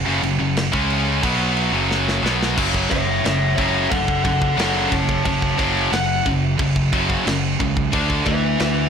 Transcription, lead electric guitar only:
2.90 C#5 E5
3.25 C#5 E5
3.55 C#5 E5
3.90 A4 F#5
4.24 A4 F#5
4.61 A4 F#5
4.92 C#5 A5
5.25 C#5 A5
5.58 C#5 A5
5.92 F#5
8.26 B4 E5
8.61 B4 E5

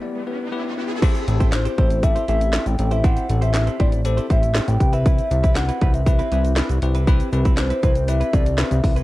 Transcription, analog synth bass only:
1.28 A1
1.78 A1
2.29 A1
2.66 A1
2.79 A1
3.29 A1
3.80 A1
4.30 A1
4.68 A1
4.80 C2
5.31 C2
5.82 C2
6.32 C2
6.70 C2
6.82 C2
7.32 C2
7.83 C2
8.33 C2
8.71 C2
8.84 C2

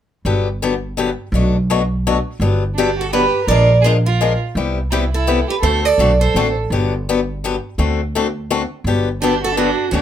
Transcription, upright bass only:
0.25 G1
1.32 B1
2.40 G1
3.47 A#1
4.55 C2
5.62 D2
5.98 B1
6.34 A1
6.70 G1
7.78 D2
8.84 G1
9.92 D2

